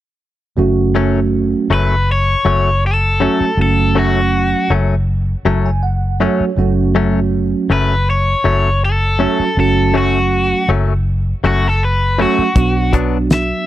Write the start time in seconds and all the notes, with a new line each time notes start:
0.57 F#1 F#3 A3 C#4 F#4
0.95 F#2 F#3 A3 C#4
1.70 F#1 F#2 F#3 A3 C#4 B4
2.12 C#5
2.45 F#1 F#2 F#3 A3 C#4
2.87 A4
3.20 F#2 F#3 A3 C#4 F#4
3.41 muted fingered electric bass stroke
3.57 F#1 F#3 A3 C#4 F#4
3.62 A4
3.95 F#2 F#3 A3 C#4 F#4
4.70 F#1 F#2 F#3 A3 C#4
5.45 F#1 F#2 F#3 A3 C#4 A5
5.66 G#5
5.83 F#5
6.20 F#2 F#3 A3 C#4 F#4 C#5
6.40 muted fingered electric bass stroke
6.57 F#1 F#3 A3 C#4 F#4
6.95 F#2 F#3 A3 C#4
7.70 F#1 F#2 F#3 A3 C#4 B4
8.10 C#5
8.44 F#1 F#2 F#3 A3 C#4
8.85 A4
9.19 F#2 F#3 A3 C#4 F#4
9.40 muted fingered electric bass stroke
9.57 F#1 F#3 A3 C#4 F#4 A4
9.94 F#2 F#3 A3 C#4 F#4
10.69 F#1 F#2 F#3 A3 C#4
11.44 F#1 F#2 F#3 A3 C#4 F#4
11.68 A4
11.85 B4
12.18 F#2 F#3 A3 C#4 F#4
12.39 muted fingered electric bass stroke
12.56 B1 F#3 B3 D4 F#4, kick, closed hi-hat
12.93 B2 F#3 B3 D4, kick, closed hi-hat
13.30 E5, snare, closed hi-hat